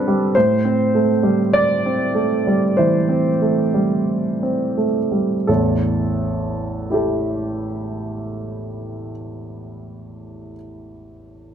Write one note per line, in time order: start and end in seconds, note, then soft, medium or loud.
0.00 0.36 D3 soft
0.00 0.08 G3 soft
0.00 0.37 C4 soft
0.00 0.37 D4 soft
0.00 0.36 A4 medium
0.00 0.34 B4 medium
0.08 0.35 G3 soft
0.35 2.73 A2 soft
0.35 1.52 C5 medium
0.65 1.11 C4 soft
0.95 1.41 A3 soft
1.23 2.20 G3 soft
1.53 2.77 D5 medium
1.86 2.34 C4 soft
2.15 2.64 A3 soft
2.47 2.96 G3 soft
2.77 3.28 E3 soft
2.77 4.77 C5 medium
3.09 3.60 C4 soft
3.42 3.94 A3 soft
3.74 4.84 G3 soft
4.43 4.99 C4 soft
4.78 5.34 A3 soft
5.12 5.47 G3 soft
5.47 9.10 A1 soft
5.47 9.10 E2 soft
5.47 6.92 A4 soft
6.90 10.52 E4 soft
6.90 10.53 G4 soft
6.90 10.55 A4 soft